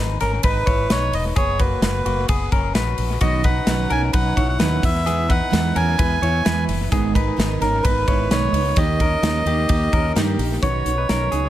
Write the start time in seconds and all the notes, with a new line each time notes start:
Already playing: G#1 D#4 B4
0.20 G#1 C#4 A#4, snare, ride
0.43 G#1 D#4 B4, kick, ride
0.66 G#1 E4 C#5, kick, ride
0.90 B1 D#4 B4 C#5, snare, ride
1.12 E1 D#5, open hi-hat, ride
1.36 F#1 B3 G#4 C#5, kick, hi-hat pedal, ride
1.59 A#3 F#4 B4, kick, ride
1.81 F#1 B4, snare, ride
2.06 F#1 A#3 F#4, ride
2.28 F#1 B3 G#4, kick, ride
2.52 F#1 C#4 A#4, kick, ride
2.75 A#1 F#4 B4, snare, ride
2.98 A#1, open hi-hat, ride
3.21 B1 B2 D#3 F#3 B3 C#4 D#4 F#4 B4 D#5, kick, hi-hat pedal, ride
3.44 F#3 C#4 D#4 B4 F#5, kick, ride
3.67 B1 B2 D#3 F#3 C#4 D#4 B4, snare, ride
3.90 B1 F#3 C#4 D#4 A#4 B4 G#5, ride
4.13 B1 F#3 C#4 D#4 B4 F#5, kick, ride
4.36 B1 F#3 C#4 D#4 E4 B4 C#5, kick, ride
4.49 F#5
4.59 D#2 B2 D#3 F#3 C#4 D#4 E4 B4, snare, ride
4.82 E2 B3 E4 B4 E5, kick, open hi-hat, ride
5.04 E3 G#3 B3 E4 G#4 B4, hi-hat pedal, ride
5.28 B3 D#4 E4 B4 F#5, kick, ride
5.50 E2 E3 G#3 B3 E4 B4, snare, ride
5.74 E2 B3 C#4 E4 A#4 B4 G#5, ride
5.98 E2 G#3 B3 E4 B4, kick, ride
6.21 E2 B3 E4 B4 C#5, ride
6.45 E2 E3 G#3 B3 E4 B4, snare, ride
6.68 F#1 B3 E4 B4, open hi-hat, ride
6.91 G#1 G#2 D#3 G#3 B3 D#4 G#4 A#4, kick, hi-hat pedal, ride
7.14 G#3 B3 D#4 A#4 B4, kick, ride
7.36 G#1 G#2 D#3 G#3 B3 D#4 A#4, snare, ride
7.60 G#1 G#3 B3 C#4 D#4 A#4, snare, ride
7.83 G#1 G#3 B3 D#4 A#4 B4, kick, ride
8.07 G#1 G#3 B3 D#4 E4 A#4 C#5, kick, ride
8.30 B1 G#2 D#3 G#3 B3 D#4 A#4 B4 C#5, snare, ride
8.52 C#2 G#3 B3 D#4 A#4, open hi-hat, ride
8.76 D#2 D#3 A#3 D#4 G4 A#4 D#5, kick, hi-hat pedal, ride
9.00 C#4 D#4 G4 A#4, kick, ride
9.23 D#2 D#3 A#3 D#4 G4 A#4, snare, ride
9.45 D#2 A#3 D#4 G4 A#4, ride
9.69 D#2 A#3 D#4 G4 A#4, kick, ride
9.92 D#2 C#4 D#4 G4 A#4, kick, ride
10.15 G2 D#3 A#3 D#4 G4 A#4, snare, ride
10.38 A#1 D#4 G4 A#4, open hi-hat, ride
10.62 B1 B2 D#3 F#3 C#4 D#4 F#4 B4 C#5, kick, closed hi-hat
10.85 B1 F#3 C#4 D#4 B4, closed hi-hat
10.98 D#4 B4
11.09 B1 B2 D#3 F#3 C#4 D#4 A#4 B4, snare, closed hi-hat
11.31 C#2 F#3 B3 C#4 D#4 G#4 B4, closed hi-hat